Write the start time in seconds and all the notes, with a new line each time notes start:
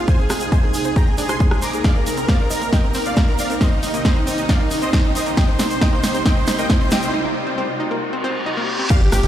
Already playing: riser
0.08 C5 G#5, kick, closed hi-hat, shaker
0.19 C4 G#4, closed hi-hat
0.30 C4 G#4, cross-stick, open hi-hat, shaker
0.40 G#4, closed hi-hat, shaker
0.52 D#4 C5 G#5, kick, closed hi-hat, shaker
0.63 A#3 G#4, closed hi-hat
0.74 G#4, open hi-hat, shaker
0.84 C4 G#4, closed hi-hat, shaker
0.96 C4 G5 A#5, kick, closed hi-hat, shaker
1.07 G#4, closed hi-hat
1.18 D4 G#4, open hi-hat, shaker
1.29 C5 G#5 C6, cross-stick, closed hi-hat, shaker
1.40 G#4, kick, closed hi-hat, shaker
1.51 G3 G#4, cross-stick, closed hi-hat
1.62 C5 A#5 D6, open hi-hat, shaker
1.73 G#4, closed hi-hat, shaker
1.84 D#4 D5 F5, kick, snare, closed hi-hat, shaker
1.95 A#3 A#4, closed hi-hat
2.06 A#4, open hi-hat, shaker
2.17 C4 A#4, closed hi-hat, shaker
2.28 C4 D5 F5, kick, snare, closed hi-hat, shaker
2.40 A#4, closed hi-hat
2.50 D#4 A#4, open hi-hat, shaker
2.62 A#3 A#4, closed hi-hat, shaker
2.73 D#5 G5, kick, snare, closed hi-hat, shaker
2.84 C4 A#4, closed hi-hat
2.94 C4 A#4, open hi-hat, shaker
3.05 D5 F5, closed hi-hat, shaker
3.16 D#4 A#4, kick, snare, closed hi-hat, shaker
3.28 A#3 A#4, closed hi-hat
3.39 D5 F5, open hi-hat, shaker
3.50 C4 A#4, closed hi-hat, shaker
3.61 C4 C5 D#5, kick, snare, closed hi-hat, shaker
3.72 D#4, closed hi-hat
3.83 D#4, open hi-hat, shaker
3.94 A#3 D#4, closed hi-hat, shaker
4.05 C5 D#5, kick, snare, closed hi-hat, shaker
4.16 C4 D#4, closed hi-hat
4.27 C4 D#4, open hi-hat, shaker
4.38 D#4, closed hi-hat, shaker
4.49 D#4 D5 F5, kick, snare, closed hi-hat, shaker
4.60 A#3 D#4, closed hi-hat
4.71 D#4, open hi-hat, shaker
4.82 C4 C5 D#5, closed hi-hat, shaker
4.93 C4 D#4, kick, snare, closed hi-hat, shaker
5.04 D#4, closed hi-hat
5.15 D#4 C5 D#5, open hi-hat, shaker
5.26 A#3 D#4, closed hi-hat, shaker
5.37 D#5 G5, kick, snare, closed hi-hat, shaker
5.48 C4 C5, closed hi-hat
5.59 C4 C5, snare, open hi-hat, shaker
5.70 C5, closed hi-hat, shaker
5.81 D#4 D#5 G5, kick, snare, closed hi-hat, shaker
5.92 A#3 C5, closed hi-hat
6.03 C5, snare, open hi-hat, shaker
6.14 C4 C5, closed hi-hat, shaker
6.25 C4 D#5 G5, kick, snare, closed hi-hat, shaker
6.37 C5, closed hi-hat
6.47 D#4 C5, snare, open hi-hat, shaker
6.58 A#3 D#5 G5, closed hi-hat, shaker
6.70 C5, kick, snare, closed hi-hat, shaker
6.81 C4 C5, closed hi-hat
6.91 C4 D#5 G5, snare, open hi-hat, shaker
7.02 C5, closed hi-hat, shaker
7.14 D#4
7.25 A#3
7.47 C4
7.58 C4
7.80 D#4
7.91 A#3
8.02 reverse cymbal
8.13 C4
8.24 C4
8.46 D#4
8.57 A#3
8.79 C4
8.90 D5 F5, kick, closed hi-hat, crash, impact, shaker
9.01 G1 G4, closed hi-hat
9.12 G1 G4, cross-stick, open hi-hat, shaker
9.23 G1 G4, closed hi-hat, shaker